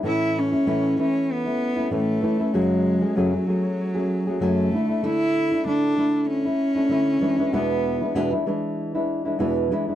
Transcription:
X:1
M:4/4
L:1/16
Q:"Swing 16ths" 1/4=96
K:A
V:1 name="Cello"
E2 C4 C2 B,4 A,4 | G,4 F,8 A,4 | E4 D4 C8 | B,4 z12 |]
V:2 name="Nylon-string guitar"
[A,,E,A,CE]3 [A,CE] [A,,E,A,CE]2 [E,A,CE]3 [A,CE]2 [A,CE] [A,,E,A,CE]2 [E,A,CE] [A,CE] | [F,,C,F,CG]3 [F,A,CG] [F,,C,F,A,CG] [F,A,CG] [F,A,CG]3 [F,A,CG]2 [F,A,CG] [F,,C,F,A,CG]2 [D,A,DE] [A,DE] | [D,A,DE]3 [A,DE] [D,A,DE]2 [D,A,DE]3 [A,E]2 [A,DE] [D,A,E]2 [E,G,DE] [E,G,DE] | [E,,B,,E,G,DE]3 [E,G,DE] [E,,B,,E,G,DE] [E,G,DE] [E,G,DE]3 [E,G,DE]2 [E,G,DE] [E,,B,,E,G,DE]2 [E,G,DE] [E,G,DE] |]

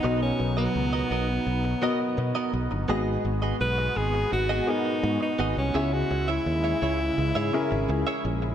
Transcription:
X:1
M:4/4
L:1/16
Q:1/4=84
K:G#m
V:1 name="Clean electric guitar"
[B,FAd] z2 [B,FAd] z [B,FAd] [B,FAd] z3 [B,FAd] z2 [B,FAd] z2 | [B,FGd]2 z [B,FGd] z4 z [B,FGd] z4 [B,FGd] z | [EGce] z2 [EGce] z [EGce] [EGce] z2 [EGce] z3 [EGce] z2 |]
V:2 name="Grand piano"
[B,FAd]8 z2 [B,FAd]6 | [B,FGd]8 z2 [B,FGA]6 | [CEGe]8 z2 [CEGA]6 |]
V:3 name="Grand piano" clef=bass
B,,6 z8 z2 | G,,6 z8 z2 | C,6 z8 z2 |]
V:4 name="Alto saxophone"
D C2 B,8- B,2 z3 | z4 B2 G2 F2 D3 D2 C- | C F2 E8- E2 z3 |]
V:5 name="Analog synth pad"
[F,B,D]16 | [G,B,F]16 | [C,G,E]16 |]
V:6 name="Fingered electric bass" clef=bass
B,,,2 B,,,2 C,,2 B,,,2 B,,,2 z2 B,, z B,,, =G,,, | G,,,2 G,,,2 B,,,2 G,,,2 G,,,2 z2 G,, z G,,, ^B,,, | C,,2 C,,2 D,,2 C,,2 C,, G,, z G,,, C,, z A,,,2 |]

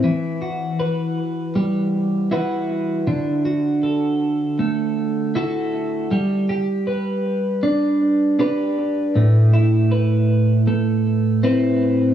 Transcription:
X:1
M:4/4
L:1/8
Q:1/4=79
K:G
V:1 name="Clean electric guitar"
E, F B2 G,2 [EFB]2 | D, F A2 A,2 [EFA]2 | G, G B2 D2 [DGB]2 | A,, E B2 A,2 [CEB]2 |]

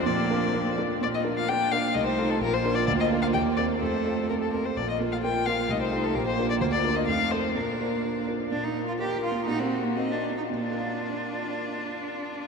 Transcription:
X:1
M:2/4
L:1/16
Q:1/4=126
K:Bb
V:1 name="Violin"
d6 z2 | d e2 f g2 f2 | e c2 A B c2 d | d e2 f g2 d2 |
c4 B A B c | d e2 f g2 f2 | e c2 A B c2 d | c d2 e f2 c2 |
B6 z2 | z4 B4 | _G4 e2 z2 | F8- |
F8 |]
V:2 name="Grand piano"
B,,2 [DFB]2 [DFB]2 [DFB]2 | B,,2 [DFB]2 [DF]2 [DFB]2 | C,,2 [EFA]2 B,,,2 [DFB]2 | D,,2 [DFB]2 E,,2 [CGB]2 |
F,,2 [CFA]2 [CFA]2 [CFA]2 | B,,,2 [B,FB]2 [B,FB]2 [B,FB]2 | C,,2 [EFA]2 B,,,2 [DFB]2 | D,,2 [DFB]2 F,,2 [CFA]2 |
B,,2 [DFB]2 [DFB]2 [DFB]2 | (3B,,2 B,2 F2 (3B2 F2 B,2 | (3B,,2 B,2 _G2 (3B2 G2 B,2 | [B,,B,FBf]8- |
[B,,B,FBf]8 |]
V:3 name="Viola"
B,6 z2 | F4 D4 | E4 F4- | F4 G4 |
A6 z2 | F8 | E4 G4 | F4 E4 |
D6 z2 | z8 | z8 | z8 |
z8 |]
V:4 name="Cello"
F,6 z2 | B,8 | A,4 B,4- | B,8 |
A,6 z2 | B,8 | A,4 B,4- | B,4 A,4 |
B,6 z2 | D E2 F G2 F2 | E C2 B, C D2 E | D8- |
D8 |]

